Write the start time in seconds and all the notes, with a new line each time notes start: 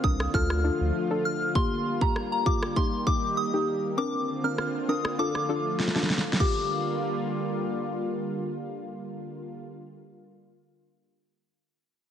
Already playing: D3 A#3 C4 F4
0.03 C2 C4 D4 A#4 D#6, kick
0.20 cross-stick
0.34 D2 F3 A3 D4 F4 A4 F6, kick
0.50 cross-stick
0.64 D4 F4 A4
0.81 D2
1.10 D4 F4 A4
1.25 F6
1.55 G3 A#3 F4 G4 C6, kick
2.01 A#3 F4 G4 A#5, kick
2.16 cross-stick
2.32 A#5
2.46 A#3 F4 G4 D6, kick
2.63 cross-stick
2.76 D#3 A#3 D#4 G4 C6, kick
3.07 A#3 D#4 G4 D6, kick
3.37 D#6
3.53 A#3 D#4 G4
3.97 D3 C4 D4 F4 A#4 D6
4.44 C4 D4 A#4 F6
4.58 cross-stick
4.88 C4 D4 A#4 D#6
5.05 cross-stick
5.19 F3 A3 D4 F4 A4 D6
5.35 cross-stick
5.49 D4 F4 A4
5.79 snare
5.88 snare
5.95 D4 F4 A4, snare
6.03 snare
6.10 snare
6.18 snare
6.33 snare
6.40 D3 G3 A#3 F4 G4 D6, kick, crash